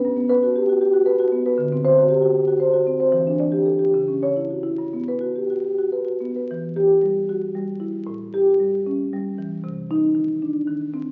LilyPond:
\new Staff \with { instrumentName = "Marimba" } { \time 6/8 \key e \dorian \tempo 4. = 76 << { r8 b'8 r2 | r8 c''8 r2 | r8 d''8 r4 cis''8 r8 | r8 b'8 r2 |
r8 g'4 r4. | r8 g'4 r4. | r8 ees'4 r4. | } \\ { g,16 b8 fis'16 g'16 fis'16 g'16 fis'16 b'16 fis'16 b16 b'16 | d16 c'8 fis'16 g'16 fis'16 g'16 fis'16 c''16 fis'16 c'16 c''16 | e16 d'8 g'16 a'16 g'16 cis16 cis'8 e'16 fis'16 e'16 | g,16 b8 fis'16 g'16 fis'16 g'16 fis'16 b'16 fis'16 b16 b'16 |
e4 g8 fis'8 g8 e'8 | a,4 g8 cis'8 g8 e8 | c4 ees8 d'8 ees8 c'8 | } >> }